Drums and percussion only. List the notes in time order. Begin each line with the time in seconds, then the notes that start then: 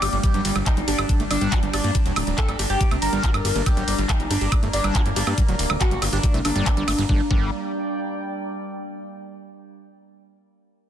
0.02 open hi-hat, ride, high woodblock
0.13 closed hi-hat
0.23 kick, closed hi-hat
0.34 closed hi-hat
0.45 open hi-hat, ride
0.56 closed hi-hat, high woodblock
0.66 kick, clap, closed hi-hat
0.77 closed hi-hat
0.88 open hi-hat, ride
0.98 closed hi-hat, high woodblock
1.09 kick, closed hi-hat
1.20 closed hi-hat
1.31 open hi-hat, ride, high woodblock
1.41 closed hi-hat
1.52 kick, clap, closed hi-hat
1.63 closed hi-hat
1.73 open hi-hat, ride, high woodblock
1.84 closed hi-hat
1.95 kick, closed hi-hat
2.06 closed hi-hat
2.16 open hi-hat, ride, high woodblock
2.27 closed hi-hat
2.38 kick, clap, closed hi-hat
2.48 closed hi-hat, high woodblock
2.59 open hi-hat, ride
2.70 closed hi-hat
2.81 kick, closed hi-hat
2.91 closed hi-hat, high woodblock
3.02 open hi-hat, ride
3.13 closed hi-hat
3.23 kick, clap, closed hi-hat
3.34 closed hi-hat, high woodblock
3.45 open hi-hat, ride
3.56 closed hi-hat
3.66 kick, closed hi-hat, high woodblock
3.77 closed hi-hat
3.88 open hi-hat, ride
3.98 closed hi-hat
4.09 kick, clap, closed hi-hat, high woodblock
4.20 closed hi-hat
4.31 open hi-hat, ride
4.41 closed hi-hat
4.52 kick, closed hi-hat, high woodblock
4.63 closed hi-hat
4.73 open hi-hat, ride
4.84 closed hi-hat, high woodblock
4.95 kick, clap, closed hi-hat
5.06 closed hi-hat
5.16 open hi-hat, ride
5.27 closed hi-hat, high woodblock
5.38 kick, closed hi-hat
5.48 closed hi-hat
5.59 open hi-hat, ride
5.70 closed hi-hat, high woodblock
5.81 kick, clap, closed hi-hat
5.91 closed hi-hat
6.02 open hi-hat, ride, high woodblock
6.13 closed hi-hat
6.23 kick, closed hi-hat
6.34 closed hi-hat
6.45 open hi-hat, ride, high woodblock
6.56 closed hi-hat
6.66 kick, clap, closed hi-hat
6.77 closed hi-hat
6.88 open hi-hat, ride, high woodblock
6.98 closed hi-hat
7.09 kick
7.31 kick